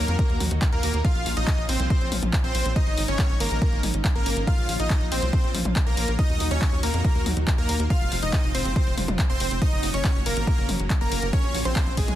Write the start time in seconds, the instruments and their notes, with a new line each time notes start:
Already playing: analog synth pad A#2 D#3 F#3 D#4 F#4, supersaw synth A#3 A#4
0.08 analog synth bass F2, closed hi-hat
0.19 supersaw synth A#3 A#4, kick, closed hi-hat
0.30 analog synth bass D#2, closed hi-hat
0.40 analog synth bass D#2, open hi-hat, mid tom
0.51 analog synth bass D#2, closed hi-hat
0.62 kick, clap, closed hi-hat
0.72 analog synth bass D#2, supersaw synth A#3 A#4, closed hi-hat
0.83 analog synth bass D#2, open hi-hat
0.94 analog synth bass D#2, closed hi-hat
1.05 analog synth pad C#3 F3 C#4 F4, supersaw synth F4 F5, kick, closed hi-hat
1.15 analog synth bass A#1, closed hi-hat
1.26 analog synth bass A#1, open hi-hat
1.37 analog synth bass A#1, supersaw synth D#4 D#5, closed hi-hat
1.47 kick, clap, closed hi-hat
1.58 analog synth bass A#1, closed hi-hat
1.69 analog synth bass A#1, supersaw synth C4 C5, open hi-hat
1.80 analog synth bass C2, closed hi-hat
1.90 supersaw synth C4 C5, kick, closed hi-hat
2.01 analog synth bass A#1, closed hi-hat
2.12 analog synth bass A#1, open hi-hat, mid tom
2.22 analog synth bass A#1, closed hi-hat, mid tom
2.33 kick, clap, closed hi-hat
2.44 analog synth bass A#1, supersaw synth C4 C5, closed hi-hat
2.55 analog synth bass A#1, open hi-hat
2.65 analog synth bass A#1, closed hi-hat
2.76 analog synth pad G#2 D#3 D#4, supersaw synth D#4 D#5, kick, closed hi-hat
2.87 analog synth bass G#1, closed hi-hat
2.98 analog synth bass G#1, open hi-hat
3.08 analog synth bass G#1, supersaw synth C#4 C#5, closed hi-hat
3.19 kick, clap, closed hi-hat
3.30 analog synth bass G#1, closed hi-hat
3.40 analog synth bass G#1, supersaw synth A#3 A#4, open hi-hat
3.51 analog synth bass A#1, closed hi-hat
3.62 supersaw synth A#3 A#4, kick, closed hi-hat
3.72 analog synth bass G#1, closed hi-hat
3.83 analog synth bass G#1, open hi-hat, mid tom
3.94 analog synth bass G#1, closed hi-hat
4.05 kick, clap, closed hi-hat
4.15 analog synth bass G#1, supersaw synth A#3 A#4, closed hi-hat
4.26 analog synth bass G#1, open hi-hat
4.36 analog synth bass G#1, closed hi-hat
4.47 analog synth pad A#2 F3 F4, supersaw synth F4 F5, kick, closed hi-hat
4.58 analog synth bass A#1, closed hi-hat
4.69 analog synth bass A#1, open hi-hat
4.79 analog synth bass A#1, supersaw synth D#4 D#5, closed hi-hat
4.90 kick, clap, closed hi-hat
5.01 analog synth bass A#1, closed hi-hat
5.11 analog synth bass A#1, supersaw synth C4 C5, open hi-hat
5.22 analog synth bass C2, closed hi-hat
5.33 supersaw synth C4 C5, kick, closed hi-hat
5.44 analog synth bass A#1, closed hi-hat
5.54 analog synth bass A#1, open hi-hat, mid tom
5.65 analog synth bass A#1, closed hi-hat, mid tom
5.76 kick, clap, closed hi-hat
5.86 analog synth bass C2, supersaw synth A#3 A#4, closed hi-hat
5.97 analog synth bass A#1, open hi-hat
6.08 analog synth bass A#1, closed hi-hat
6.19 analog synth pad A#2 D#3 F#3 D#4 F#4, supersaw synth D#4 D#5, kick, closed hi-hat
6.29 analog synth bass D#2, closed hi-hat
6.40 analog synth bass D#2, open hi-hat
6.51 analog synth bass D#2, supersaw synth C#4 C#5, closed hi-hat
6.62 kick, clap, closed hi-hat
6.72 analog synth bass D#2, closed hi-hat
6.83 analog synth bass D#2, supersaw synth A#3 A#4, open hi-hat
6.94 analog synth bass F2, closed hi-hat
7.05 supersaw synth A#3 A#4, kick, closed hi-hat
7.15 analog synth bass D#2, closed hi-hat
7.26 analog synth bass D#2, open hi-hat, mid tom
7.37 analog synth bass D#2, closed hi-hat
7.47 kick, clap, closed hi-hat
7.58 analog synth bass D#2, supersaw synth A#3 A#4, closed hi-hat
7.69 analog synth bass D#2, open hi-hat
7.79 analog synth bass D#2, closed hi-hat
7.90 analog synth pad G#2 C3 F3 C4 F4, supersaw synth F4 F5, kick, closed hi-hat
8.01 analog synth bass F1, closed hi-hat
8.12 analog synth bass F1, open hi-hat
8.23 analog synth bass F1, supersaw synth D#4 D#5, closed hi-hat
8.33 kick, clap, closed hi-hat
8.44 analog synth bass F1, closed hi-hat
8.55 analog synth bass F1, supersaw synth C4 C5, open hi-hat
8.65 analog synth bass F#1, closed hi-hat
8.76 supersaw synth C4 C5, kick, closed hi-hat
8.87 analog synth bass F1, closed hi-hat
8.97 analog synth bass F1, open hi-hat, mid tom
9.08 analog synth bass F1, closed hi-hat, mid tom
9.19 kick, clap, closed hi-hat
9.30 analog synth bass F1, supersaw synth C4 C5, closed hi-hat
9.40 analog synth bass F1, open hi-hat
9.51 analog synth bass F1, closed hi-hat
9.62 analog synth pad A#2 C#3 F#3 C#4 F#4, supersaw synth D#4 D#5, kick, closed hi-hat
9.72 analog synth bass F#1, closed hi-hat
9.83 analog synth bass F#1, open hi-hat
9.94 analog synth bass F#1, supersaw synth C#4 C#5, closed hi-hat
10.04 kick, clap, closed hi-hat
10.15 analog synth bass F#1, closed hi-hat
10.26 analog synth bass F#1, supersaw synth A#3 A#4, open hi-hat
10.37 analog synth bass G#1, closed hi-hat
10.47 supersaw synth A#3 A#4, kick, closed hi-hat
10.58 analog synth bass F#1, closed hi-hat
10.69 analog synth bass F#1, open hi-hat, mid tom
10.79 analog synth bass F#1, closed hi-hat
10.90 kick, clap, closed hi-hat
11.01 analog synth bass F#1, supersaw synth A#3 A#4, closed hi-hat
11.12 analog synth bass F#1, open hi-hat
11.22 analog synth bass F#1, closed hi-hat
11.33 analog synth pad A#2 F3 F4, supersaw synth C#4 C#5, kick, closed hi-hat
11.44 analog synth bass A#1, closed hi-hat
11.54 analog synth bass A#1, open hi-hat
11.65 analog synth bass A#1, supersaw synth C4 C5, closed hi-hat
11.76 kick, clap, closed hi-hat
11.87 analog synth bass A#1, closed hi-hat
11.97 analog synth bass A#1, supersaw synth G#3 G#4, kick, open hi-hat
12.08 analog synth bass C2, closed hi-hat, mid tom